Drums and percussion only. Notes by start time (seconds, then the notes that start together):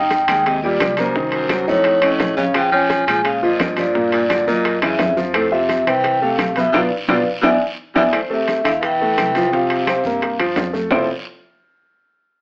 0.10 high bongo, high conga, high timbale, short guiro
0.28 high bongo, high conga, high timbale, short guiro, claves
0.45 high bongo, high conga, high timbale, long guiro
0.63 high bongo, high conga
0.79 high bongo, low bongo, high conga, high timbale, short guiro, claves
0.97 high conga, high timbale, short guiro
1.15 high bongo, high conga, long guiro
1.32 high bongo, high conga, high timbale
1.50 high bongo, high conga, high timbale, short guiro, claves
1.68 high bongo, high conga, short guiro
1.84 high bongo, high conga, high timbale, long guiro
2.02 high bongo, high conga, high timbale, claves
2.20 high bongo, low bongo, high conga, high timbale, short guiro
2.37 high conga, short guiro
2.55 high bongo, high timbale, long guiro, claves
2.73 high bongo, high conga
2.90 high bongo, high conga, high timbale, short guiro
3.07 high bongo, high conga, high timbale, short guiro, claves
3.25 high bongo, high conga, high timbale, long guiro
3.43 high bongo, high conga
3.60 high bongo, low bongo, high conga, high timbale, low timbale, short guiro, claves
3.77 high conga, high timbale, short guiro
3.95 high bongo, high conga, long guiro
4.12 high bongo, high conga, high timbale
4.30 high bongo, high conga, high timbale, short guiro, claves
4.47 high bongo, high conga, short guiro
4.65 high bongo, high conga, high timbale, long guiro
4.82 high bongo, high conga, high timbale, claves
4.99 high bongo, low bongo, high conga, high timbale, low timbale, short guiro
5.17 high conga, short guiro
5.34 high bongo, high conga, high timbale, long guiro, claves
5.52 high bongo, high conga
5.69 high bongo, high conga, high timbale, short guiro
5.87 high bongo, high conga, high timbale, short guiro, claves
6.04 high bongo, high conga, high timbale, long guiro
6.21 high bongo, high conga
6.39 high bongo, low bongo, high conga, high timbale, short guiro, claves
6.56 high conga, high timbale, short guiro
6.74 low bongo, high conga, high timbale, long guiro, claves
7.08 low bongo, high conga, high timbale, claves
7.43 low bongo, high conga, high timbale, claves
7.96 low bongo, high conga, high timbale, long guiro, claves
8.13 high bongo, high conga, high timbale, long guiro, claves
8.30 high bongo, high conga
8.48 high bongo, high conga, high timbale, short guiro
8.65 high bongo, high conga, high timbale, short guiro, claves
8.83 high bongo, high conga, high timbale, long guiro
9.01 high bongo, high conga
9.17 high bongo, low bongo, high conga, high timbale, short guiro, claves
9.35 high conga, high timbale, short guiro
9.52 high bongo, high conga, long guiro
9.70 high bongo, high conga, high timbale
9.87 high bongo, high conga, high timbale, short guiro, claves
10.04 high bongo, high conga, short guiro
10.21 high bongo, high conga, high timbale, long guiro
10.39 high bongo, high conga, high timbale, claves
10.56 high bongo, low bongo, high conga, high timbale, low timbale, short guiro
10.74 high conga, short guiro
10.91 low bongo, low conga, low timbale, long guiro, claves